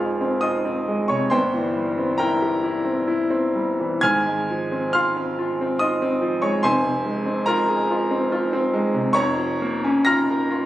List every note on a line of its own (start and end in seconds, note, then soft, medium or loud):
0.00 1.26 F1 medium
0.00 1.26 F2 medium
0.00 1.09 C3 soft
0.00 0.88 G#3 soft
0.00 0.21 C4 soft
0.00 0.42 F4 medium
0.00 0.13 G#4 soft
0.00 0.38 F5 medium
0.00 1.33 G#5 medium
0.00 0.38 C6 medium
0.00 1.33 F6 medium
0.00 1.33 G#6 medium
0.21 0.56 C4 soft
0.41 0.78 F4 soft
0.41 1.04 D#5 medium
0.41 1.07 D#6 medium
0.65 1.00 C4 soft
0.88 1.22 G#3 soft
1.08 1.31 C3 soft
1.08 1.29 C#5 medium
1.08 1.30 C#6 medium
1.30 4.00 G1 medium
1.30 4.01 G2 medium
1.30 2.15 C5 medium
1.30 2.15 G5 medium
1.30 2.19 C6 medium
1.54 1.89 E3 soft
1.76 2.11 G3 soft
1.98 2.33 C4 soft
2.18 2.55 E4 medium
2.18 4.00 A#4 medium
2.18 4.00 G5 medium
2.18 4.03 A#5 medium
2.42 2.77 G4 medium
2.64 2.99 E4 soft
2.85 3.21 C4 soft
3.08 3.45 E4 soft
3.30 3.70 C4 medium
3.55 3.94 G3 soft
3.80 4.04 E3 soft
4.01 6.59 G#1 medium
4.01 6.59 G#2 medium
4.01 4.89 G#5 medium
4.01 4.89 F6 medium
4.01 4.92 G#6 loud
4.26 4.62 G#3 soft
4.50 4.85 F3 soft
4.72 5.07 C4 soft
4.93 5.30 F4 medium
4.93 5.77 F5 medium
4.93 5.77 C6 medium
4.93 5.80 F6 loud
5.17 5.51 C4 medium
5.39 5.73 F4 medium
5.61 5.94 C4 medium
5.79 6.14 F4 medium
5.79 6.39 D#5 medium
5.79 6.42 D#6 loud
6.02 6.35 C4 medium
6.21 6.55 F3 medium
6.42 6.64 G#3 soft
6.42 6.62 C#5 medium
6.42 6.63 C#6 medium
6.63 9.10 F1 medium
6.63 9.10 F2 medium
6.63 7.42 C5 medium
6.63 7.42 G#5 medium
6.63 7.46 C6 loud
6.84 7.17 C3 medium
7.06 7.38 G#3 soft
7.26 7.59 C4 medium
7.46 7.81 F4 medium
7.46 9.10 A#4 medium
7.46 9.13 A#5 loud
7.69 8.02 G#4 medium
7.90 8.23 F4 medium
8.11 8.43 C4 medium
8.32 8.64 F4 medium
8.53 8.85 C4 medium
8.74 9.06 G#3 medium
8.94 9.15 C3 medium
9.13 10.66 F1 medium
9.13 10.66 F2 medium
9.13 10.02 C#5 medium
9.13 10.03 A#5 medium
9.13 10.06 C#6 loud
9.37 9.74 F3 soft
9.62 9.98 A#3 medium
9.84 10.20 C#4 medium
10.05 10.42 F4 medium
10.05 10.66 A#5 loud
10.05 10.66 F6 loud
10.05 10.66 A#6 loud
10.31 10.64 A#4 medium
10.51 10.66 F4 medium